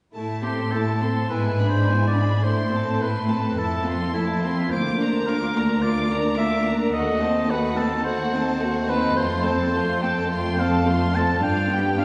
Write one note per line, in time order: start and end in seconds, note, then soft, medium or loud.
0.14 1.27 A2 soft
0.14 0.42 A3 soft
0.14 0.43 E4 soft
0.14 0.42 A5 soft
0.43 0.73 C4 soft
0.43 0.73 G4 soft
0.43 0.74 A4 soft
0.43 0.73 C6 soft
0.71 1.02 A3 soft
0.71 1.03 E4 soft
0.71 1.29 A4 soft
0.71 1.02 A5 soft
1.02 1.31 C4 soft
1.02 1.31 A4 soft
1.02 1.31 C6 soft
1.30 2.45 G#2 soft
1.30 1.58 B3 soft
1.30 1.59 E4 soft
1.30 1.68 B4 soft
1.30 1.58 G#5 soft
1.60 1.89 D4 soft
1.60 1.90 G#4 soft
1.60 1.89 B5 soft
1.69 2.06 C5 soft
1.89 2.17 B3 soft
1.89 2.17 E4 soft
1.89 2.18 G#5 soft
2.08 2.46 D5 soft
2.17 2.45 D4 soft
2.17 2.46 G#4 soft
2.17 2.46 B5 soft
2.44 3.56 A2 soft
2.44 2.71 A3 soft
2.44 2.72 E4 soft
2.44 3.03 C5 soft
2.44 2.71 C6 soft
2.73 3.01 C4 soft
2.73 3.02 A4 soft
2.73 3.02 A5 soft
3.01 3.30 A3 soft
3.01 3.30 E4 soft
3.01 3.60 B4 soft
3.01 3.30 C6 soft
3.29 3.58 C4 soft
3.29 3.58 A4 soft
3.29 3.58 A5 soft
3.57 4.69 F2 soft
3.57 3.85 A3 soft
3.57 3.85 E4 soft
3.57 4.13 A4 soft
3.57 3.85 A5 soft
3.86 4.15 C4 soft
3.86 4.14 F4 soft
3.86 4.15 C6 soft
4.14 4.43 A3 soft
4.14 4.42 E4 soft
4.14 4.72 E4 soft
4.14 4.44 A5 soft
4.43 4.71 C4 soft
4.43 4.71 F4 soft
4.43 4.72 C6 soft
4.70 6.95 D2 soft
4.70 4.98 A#3 soft
4.70 4.98 F4 soft
4.70 5.29 C5 soft
4.70 4.98 D6 soft
5.00 5.28 D4 soft
5.00 5.29 A#4 soft
5.00 5.28 A#5 soft
5.27 5.57 A#3 soft
5.27 5.57 F4 soft
5.27 5.84 A#4 soft
5.27 5.57 D6 soft
5.56 5.84 D4 soft
5.56 5.84 A#4 soft
5.56 5.85 A#5 soft
5.83 6.10 A#3 soft
5.83 6.10 F4 soft
5.83 6.37 D5 soft
5.83 6.10 D6 soft
6.11 6.39 D4 soft
6.11 6.40 A#4 soft
6.11 6.40 A#5 soft
6.38 6.67 A#3 soft
6.38 6.67 F4 soft
6.38 6.74 E5 medium
6.38 6.67 D6 soft
6.66 6.95 D4 soft
6.66 6.95 A#4 soft
6.66 6.95 A#5 soft
6.94 9.13 D#2 soft
6.94 7.21 A3 soft
6.94 7.22 F#4 soft
6.94 7.52 D#5 medium
6.94 7.20 F#5 soft
7.22 7.51 C4 soft
7.22 7.51 D#4 soft
7.22 7.50 A5 soft
7.50 7.79 A3 soft
7.50 7.79 F#4 soft
7.50 7.79 B4 medium
7.50 7.78 F#5 soft
7.77 8.06 C4 soft
7.77 8.06 D#4 soft
7.77 8.04 A4 soft
7.77 8.06 A5 soft
8.04 8.32 A3 soft
8.04 8.32 F#4 soft
8.04 8.91 C5 medium
8.04 8.32 F#5 soft
8.33 8.61 C4 soft
8.33 8.62 D#4 soft
8.33 8.62 A5 soft
8.61 8.89 A3 soft
8.61 8.90 F#4 soft
8.61 8.89 F#5 soft
8.89 9.17 C4 soft
8.89 9.18 D#4 soft
8.89 9.18 B4 medium
8.89 9.17 A5 soft
9.16 11.39 F2 soft
9.16 9.43 A3 soft
9.16 9.44 F4 soft
9.16 9.45 C5 medium
9.16 9.43 C6 soft
9.46 9.74 C4 soft
9.46 9.74 A4 soft
9.46 10.01 C5 medium
9.46 9.74 A5 soft
9.74 10.02 A3 soft
9.74 10.03 F4 soft
9.74 10.03 C6 soft
10.01 10.30 C4 soft
10.01 10.31 A4 soft
10.01 10.61 G5 medium
10.01 10.31 A5 soft
10.30 10.56 A3 soft
10.30 10.56 F4 soft
10.30 10.58 C6 soft
10.57 10.86 C4 soft
10.57 10.87 A4 soft
10.57 11.17 F5 medium
10.57 10.88 A5 soft
10.86 11.15 A3 soft
10.86 11.15 F4 soft
10.86 11.16 C6 soft
11.14 11.43 C4 soft
11.14 11.44 A4 soft
11.14 11.42 A5 medium
11.14 11.44 A5 soft
11.43 12.05 G2 soft
11.43 11.69 D4 soft
11.43 11.70 F4 soft
11.43 11.71 F5 soft
11.43 11.98 G5 medium
11.71 12.00 B3 soft
11.71 12.00 G4 soft
11.71 12.00 G5 soft
11.98 12.05 D4 soft
11.98 12.05 F4 soft
11.98 12.05 F5 medium
11.98 12.05 F5 soft